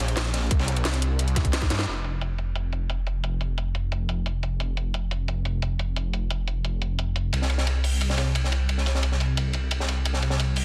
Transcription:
0.00 A#1
0.08 closed hi-hat
0.16 snare, closed hi-hat, ride
0.25 snare
0.33 snare, closed hi-hat, ride
0.42 snare
0.51 C2, kick, closed hi-hat, ride
0.59 snare, ride
0.68 snare, closed hi-hat
0.77 closed hi-hat, ride
0.85 C2, snare, closed hi-hat, ride
0.93 snare, closed hi-hat
1.02 closed hi-hat, ride
1.19 closed hi-hat, ride
1.28 closed hi-hat
1.36 kick, snare, closed hi-hat, ride
1.45 kick, closed hi-hat
1.53 snare, closed hi-hat, ride
1.62 kick, snare
1.70 G2, snare, closed hi-hat, ride
1.79 snare, ride
1.87 F1, closed hi-hat
2.04 closed hi-hat
2.21 closed hi-hat
2.38 closed hi-hat
2.56 closed hi-hat
2.73 closed hi-hat
2.90 closed hi-hat
3.07 closed hi-hat
3.24 closed hi-hat
3.41 closed hi-hat
3.58 closed hi-hat
3.75 closed hi-hat
3.92 closed hi-hat
4.09 closed hi-hat
4.26 closed hi-hat
4.43 closed hi-hat
4.60 closed hi-hat
4.77 closed hi-hat
4.94 closed hi-hat
5.11 closed hi-hat
5.28 closed hi-hat
5.45 closed hi-hat
5.62 closed hi-hat
5.79 closed hi-hat
5.96 closed hi-hat
6.13 closed hi-hat
6.30 closed hi-hat
6.48 closed hi-hat
6.65 closed hi-hat
6.82 closed hi-hat
6.99 closed hi-hat
7.16 closed hi-hat
7.33 C2, closed hi-hat, ride
7.42 snare
7.50 closed hi-hat, ride
7.58 snare
7.67 closed hi-hat, ride
7.84 closed hi-hat, open hi-hat
8.01 closed hi-hat, ride
8.10 snare
8.18 snare, closed hi-hat, ride
8.35 closed hi-hat, ride
8.44 snare
8.52 closed hi-hat, ride
8.69 closed hi-hat, ride
8.78 snare
8.86 snare, closed hi-hat, ride
8.95 snare
9.03 closed hi-hat, ride
9.12 snare
9.20 closed hi-hat, ride
9.37 closed hi-hat, ride
9.53 closed hi-hat, ride
9.71 closed hi-hat, ride
9.80 snare
9.88 closed hi-hat, ride
10.05 closed hi-hat, ride
10.14 snare
10.22 closed hi-hat, ride
10.30 snare
10.40 closed hi-hat, ride
10.56 closed hi-hat, open hi-hat

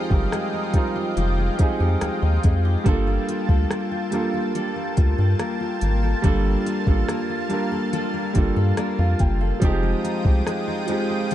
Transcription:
Already playing: F3 G#3 C4 D#4 F4 G4 G#4 D#5 F5 G5
0.09 G1 G3 C4 D#4 F4 G4, kick
0.14 A#4
0.32 G#3, cross-stick, closed hi-hat
0.54 D#4
0.73 G3 G#3 C4 D#4 F4, kick, closed hi-hat
0.78 A#4
0.96 G4
1.17 F1 F3 G4, closed hi-hat
1.38 G#3
1.57 F2 C4 D#4 F4 G4, kick, closed hi-hat
1.62 G#4
1.80 F2 G4
2.01 D#2 G#3, cross-stick, closed hi-hat
2.22 D#2 D#4
2.43 F2 G#3, kick, closed hi-hat
2.65 G4
2.84 G1 G3 A#3 D4 F4 A4 A5, kick, closed hi-hat
2.89 A4
3.07 A#3
3.29 F4, closed hi-hat
3.49 D2 A4, kick
3.71 A#3, cross-stick, closed hi-hat
3.91 F4
4.11 G3 A#3 D4 F4, closed hi-hat
4.16 A4
4.34 A4
4.55 G3 A4, closed hi-hat
4.76 A#3
4.97 D2 F4, kick, closed hi-hat
5.18 G2 A4
5.39 A#3, cross-stick, closed hi-hat
5.61 F4
5.81 G#1 A#3, closed hi-hat
6.03 A4
6.22 G1 G3 A#3 D4 F4 A4 F5, kick, closed hi-hat
6.27 A4
6.45 A#3
6.66 F4, closed hi-hat
6.86 A1 G3 A#3 D4 F4 A4, kick
6.90 A4
7.08 A#3, cross-stick, closed hi-hat
7.30 F4
7.49 G3 A#3 D4 F4, closed hi-hat
7.54 A#4
7.72 A4
7.93 G3 A4, closed hi-hat
8.14 A#3
8.33 G1 G3 A#3 D4 F4, kick, closed hi-hat
8.38 A4
8.56 G2 A4
8.77 A#3 D5, cross-stick, closed hi-hat
8.98 F2 F4 F5
9.19 F#1 A#3 G5, kick, closed hi-hat
9.41 A4 F5
9.60 F1 F3 G3 G#3 C4 D#4 F4 G4 G5 D#6, kick, closed hi-hat
9.65 G#3 G4
9.83 G#3
10.04 D#4, closed hi-hat
10.25 C2 G4, kick
10.47 G#3, cross-stick, closed hi-hat
10.68 D#4
10.87 F3 G#3 C4 D#4, closed hi-hat
10.92 G4
11.10 G4
11.31 F3, closed hi-hat

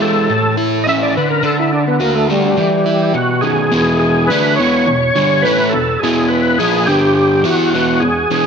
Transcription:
Already playing: E3 E4
0.01 G#3 A4
0.30 A2
0.57 E4
0.84 C#4 D#5
0.89 E5
1.02 D5
1.17 D3 B4
1.30 A#4
1.43 D3 A4
1.59 E4
1.73 D4
1.88 B3
2.00 A#3 F#4
2.15 A3
2.30 G3 A3
2.58 E3
2.86 E4
3.14 B2 F#4
3.41 D#3 G#4
3.72 E2 B2 E3
3.99 G#4
4.27 D3 A3 D4 B4
4.56 B2 C#5
4.60 E2 E3
4.87 E2 B2
5.16 G2 D3 G3
5.42 A2 E3 A3 B4
5.69 A4
5.74 E2 B2
5.99 G#4
6.04 E2 B2 E3
6.28 B4
6.58 A#2 F3 A#3 G#4
6.86 G2 D3 G3 G4
7.15 G4
7.44 E3 B3 E4 F#4
7.71 E2 B2 E3 F#4
8.00 E2 B2 G#4
8.31 E2 B2 E3

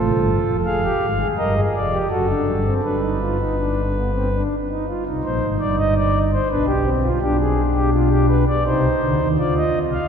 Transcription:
Already playing: A1 F4 A4
0.11 G1 G2
0.47 F1 F2
0.65 F1 F2 G#4 F5
0.84 G4
1.03 G#1 G#2
1.20 G#4
1.38 G1 G2 A#4 D#5
1.56 G#4
1.74 F1 F2 D5
1.92 G4
2.10 F#1 F#2 F#4 A4
2.28 D4
2.46 G1 G2
2.65 C4
2.83 G1 G2 D4 B4
3.02 D#4
3.21 F4
3.39 D#4
3.58 D4
3.95 B3
4.13 C4
4.32 D4
4.69 D#4
4.88 F4
5.05 C2 C3 D#4
5.23 A#1 A#2 C5
5.42 G#1 G#2
5.60 G1 G2 D5
5.79 D#5
5.96 D5
6.32 C5
6.50 B1 B2 D4 B4
6.67 G4
6.85 C4
7.03 F4
7.21 B1 B2 D4 G4
7.39 G#4
7.74 G4
7.93 F4
8.11 G4
8.29 B4
8.47 D5
8.65 C2 C3 D#4 C5
9.02 D2 D3
9.21 D#2 D#3
9.38 D2 D3 F4 D5
9.57 D#5
9.75 C2 C3
9.93 F5

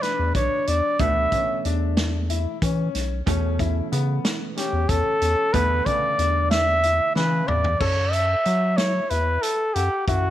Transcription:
Already playing: B2 E3 A3 D4
0.02 D4 B4, snare, closed hi-hat
0.19 E2
0.35 B1 D4 C#5, kick, closed hi-hat
0.67 E2 D4 D5, closed hi-hat
0.99 D2 B2 E3 A3 B3 D4 E5, kick, closed hi-hat
1.32 C#4, kick, closed hi-hat
1.65 E2 D4, closed hi-hat
1.97 snare, closed hi-hat
2.30 E4, closed hi-hat
2.62 E3 C#4, kick, closed hi-hat
2.95 B1, snare, closed hi-hat
3.26 E2 B2 E3 A3 C#4, kick, closed hi-hat
3.59 E4, kick, closed hi-hat
3.92 C#3 B3, closed hi-hat
4.25 snare, closed hi-hat
4.57 C#4 G4, snare, closed hi-hat
4.73 E2
4.89 E2 C#4 A4, kick, closed hi-hat
5.22 E2 C#4, closed hi-hat
5.53 E2 B2 D3 E3 A3 B3 B4, kick, closed hi-hat
5.86 C#3 D5, kick, closed hi-hat
6.19 E2 D4, closed hi-hat
6.51 E5, snare, closed hi-hat
6.83 E4, closed hi-hat
7.16 C#3 E3 B4, snare
7.48 E2 D5, mid tom
7.64 floor tom
7.80 F#2 A4 C#5, kick, crash
8.13 E5, closed hi-hat
8.45 F#3 F#4, closed hi-hat
8.77 E4 C#5, snare, closed hi-hat
9.10 E2 E4 B4, closed hi-hat
9.42 A4, closed hi-hat
9.74 F#2 G4 F#5, closed hi-hat
10.07 F#2 E4 F#4, kick, closed hi-hat

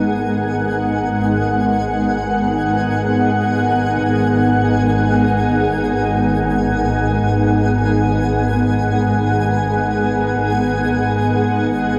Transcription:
Already playing: G#1 G#3 B3 D#4 G#4 A#4 F#5 G#5

